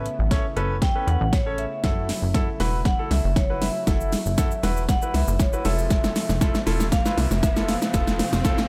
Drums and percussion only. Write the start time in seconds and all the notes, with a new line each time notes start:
0.06 closed hi-hat
0.31 kick, snare, closed hi-hat
0.57 closed hi-hat
0.82 kick, snare, closed hi-hat
1.08 closed hi-hat
1.33 kick, snare, closed hi-hat
1.58 closed hi-hat
1.84 kick, snare, closed hi-hat
2.09 snare, open hi-hat
2.34 kick, snare, closed hi-hat
2.60 snare, open hi-hat
2.85 kick, snare, closed hi-hat
3.11 snare, open hi-hat
3.36 kick, snare, closed hi-hat
3.62 snare, open hi-hat
3.87 kick, snare, closed hi-hat, shaker
4.01 shaker
4.12 snare, open hi-hat, shaker
4.26 shaker
4.38 kick, snare, closed hi-hat, shaker
4.51 shaker
4.63 snare, open hi-hat, shaker
4.77 shaker
4.89 kick, snare, closed hi-hat, shaker
5.02 shaker
5.14 snare, open hi-hat, shaker
5.28 shaker
5.40 kick, snare, closed hi-hat, shaker
5.53 shaker
5.65 snare, open hi-hat, shaker
5.78 shaker
5.90 kick, snare, closed hi-hat, shaker
6.04 snare, shaker
6.16 snare, open hi-hat, shaker
6.29 snare, shaker
6.41 kick, snare, closed hi-hat, shaker
6.55 snare, shaker
6.67 snare, open hi-hat, shaker
6.80 snare, shaker
6.92 kick, snare, closed hi-hat, shaker
7.06 snare, shaker
7.18 snare, open hi-hat, shaker
7.31 snare, shaker
7.43 kick, snare, closed hi-hat, shaker
7.57 snare, shaker
7.68 snare, open hi-hat, shaker
7.82 snare, shaker
7.94 kick, snare, closed hi-hat, shaker
8.07 snare, shaker
8.19 snare, open hi-hat, shaker
8.33 snare, shaker
8.45 kick, snare, closed hi-hat, shaker
8.58 snare, shaker